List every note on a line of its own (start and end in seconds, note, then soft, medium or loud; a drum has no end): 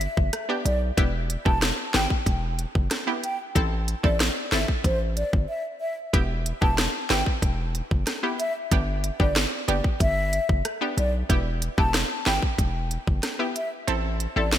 0.00 0.14 E5 loud
0.00 closed hi-hat soft
0.17 0.30 F#1 medium
0.17 kick medium
0.33 cross-stick medium
0.33 closed hi-hat medium
0.49 0.68 B3 medium
0.49 0.68 D4 medium
0.49 0.68 G4 medium
0.65 0.91 B1 loud
0.65 0.79 D5 medium
0.65 closed hi-hat medium
0.97 1.37 E1 loud
0.97 1.17 B3 loud
0.97 1.17 E4 medium
0.97 1.17 G4 loud
0.97 kick loud
0.97 closed hi-hat medium
1.30 closed hi-hat medium
1.45 1.72 E1 loud
1.45 1.65 B3 medium
1.45 1.65 E4 medium
1.45 1.65 G4 medium
1.45 1.59 A5 medium
1.45 kick loud
1.62 cross-stick loud
1.62 snare loud
1.62 closed hi-hat medium
1.94 2.07 G1 medium
1.94 2.13 B3 medium
1.94 2.13 E4 medium
1.94 2.14 G4 medium
1.94 2.07 G5 medium
1.94 cross-stick medium
1.94 snare loud
1.94 closed hi-hat medium
2.10 kick medium
2.26 2.66 E1 loud
2.26 kick medium
2.26 closed hi-hat medium
2.59 closed hi-hat soft
2.75 2.88 F#1 medium
2.75 kick medium
2.91 cross-stick medium
2.91 snare medium
2.91 closed hi-hat medium
3.07 3.26 B3 medium
3.07 3.26 E4 medium
3.07 3.27 G4 medium
3.24 3.37 G5 medium
3.24 closed hi-hat medium
3.55 3.95 A1 loud
3.55 3.75 C4 loud
3.55 3.75 E4 medium
3.55 3.75 A4 loud
3.55 kick loud
3.55 closed hi-hat medium
3.88 closed hi-hat medium
4.03 4.30 A1 medium
4.03 4.23 C4 medium
4.03 4.23 E4 medium
4.03 4.23 A4 medium
4.03 4.17 D5 medium
4.03 kick loud
4.20 cross-stick medium
4.20 snare loud
4.20 closed hi-hat medium
4.52 4.65 G1 medium
4.52 4.71 C4 medium
4.52 4.71 E4 medium
4.52 4.72 A4 medium
4.52 4.66 E5 medium
4.52 cross-stick medium
4.52 snare loud
4.52 closed hi-hat medium
4.68 kick medium
4.84 5.24 A1 loud
4.84 4.98 C5 medium
4.84 kick medium
4.84 closed hi-hat medium
5.17 5.30 D5 medium
5.17 closed hi-hat soft
5.33 5.46 G1 medium
5.33 kick medium
5.49 5.62 E5 medium
5.81 5.94 E5 medium
6.13 6.53 E1 loud
6.13 6.33 B3 medium
6.13 6.33 E4 medium
6.13 6.33 G4 loud
6.13 kick loud
6.13 closed hi-hat medium
6.46 closed hi-hat medium
6.61 6.88 E1 loud
6.61 6.81 B3 medium
6.61 6.81 E4 medium
6.61 6.81 G4 medium
6.61 6.75 A5 medium
6.61 kick loud
6.78 cross-stick loud
6.78 snare loud
6.78 closed hi-hat medium
7.10 7.23 G1 medium
7.10 7.29 B3 medium
7.10 7.30 E4 medium
7.10 7.30 G4 medium
7.10 7.24 G5 medium
7.10 cross-stick medium
7.10 snare loud
7.10 closed hi-hat medium
7.26 kick medium
7.42 7.82 E1 loud
7.42 kick medium
7.42 closed hi-hat medium
7.75 closed hi-hat soft
7.91 8.04 F#1 medium
7.91 kick medium
8.07 cross-stick medium
8.07 snare medium
8.07 closed hi-hat medium
8.23 8.42 B3 medium
8.23 8.42 E4 medium
8.23 8.43 G4 medium
8.39 8.53 E5 medium
8.39 closed hi-hat medium
8.71 9.11 G1 loud
8.71 8.91 B3 loud
8.71 8.91 D4 medium
8.71 8.91 G4 loud
8.71 kick loud
8.71 closed hi-hat medium
9.04 closed hi-hat medium
9.20 9.46 G1 medium
9.20 9.39 B3 medium
9.20 9.39 D4 medium
9.20 9.39 G4 medium
9.20 9.33 D5 medium
9.20 kick loud
9.36 cross-stick loud
9.36 snare loud
9.36 closed hi-hat medium
9.68 9.81 F#1 medium
9.68 9.87 B3 medium
9.68 9.88 D4 medium
9.68 9.88 G4 medium
9.68 9.82 D5 medium
9.68 closed hi-hat medium
9.84 kick medium
10.00 10.40 G1 loud
10.00 10.46 E5 loud
10.00 kick medium
10.00 closed hi-hat medium
10.33 closed hi-hat soft
10.49 10.62 F#1 medium
10.49 kick medium
10.65 cross-stick medium
10.65 closed hi-hat medium
10.81 11.00 B3 medium
10.81 11.01 D4 medium
10.81 11.01 G4 medium
10.97 11.24 B1 loud
10.97 11.11 D5 medium
10.97 closed hi-hat medium
11.29 11.69 E1 loud
11.29 11.49 B3 medium
11.29 11.49 E4 medium
11.29 11.49 G4 loud
11.29 kick loud
11.29 closed hi-hat medium
11.62 closed hi-hat medium
11.78 12.04 E1 loud
11.78 11.97 B3 medium
11.78 11.97 E4 medium
11.78 11.97 G4 medium
11.78 11.92 A5 medium
11.78 kick loud
11.94 cross-stick loud
11.94 snare loud
11.94 closed hi-hat medium
12.26 12.40 G1 medium
12.26 12.46 B3 medium
12.26 12.46 E4 medium
12.26 12.46 G4 medium
12.26 12.40 G5 medium
12.26 cross-stick medium
12.26 snare loud
12.26 closed hi-hat medium
12.42 kick medium
12.58 12.98 E1 loud
12.58 kick medium
12.58 closed hi-hat medium
12.91 closed hi-hat soft
13.07 13.20 F#1 medium
13.07 kick medium
13.23 cross-stick medium
13.23 snare medium
13.23 closed hi-hat medium
13.39 13.58 B3 medium
13.39 13.59 E4 medium
13.39 13.59 G4 medium
13.56 13.69 E5 medium
13.56 closed hi-hat medium
13.88 14.27 A1 loud
13.88 14.07 C4 medium
13.88 14.07 E4 medium
13.88 14.07 A4 loud
13.88 closed hi-hat medium
14.20 closed hi-hat medium
14.36 14.58 A1 loud
14.36 14.55 C4 medium
14.36 14.56 E4 medium
14.36 14.56 A4 medium
14.36 14.50 D5 medium
14.52 cross-stick loud
14.52 snare loud
14.52 closed hi-hat medium